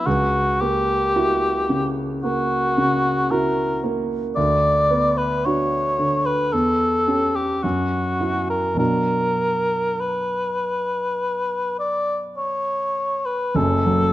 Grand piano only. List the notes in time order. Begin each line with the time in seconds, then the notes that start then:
0.06 C#2
0.61 A#3
1.16 E4 F#4
1.69 C#3
2.24 A#3
2.77 C#3
3.31 E4 F#4
3.84 A#3
4.37 D2
4.90 B3
5.46 D4 F#4
5.99 D3
6.53 E2
7.08 C#4 G4
7.64 F#2
8.21 E4 F#4
8.75 B2 F#3 D4 F#4
13.55 F#1 F#2
13.86 F#3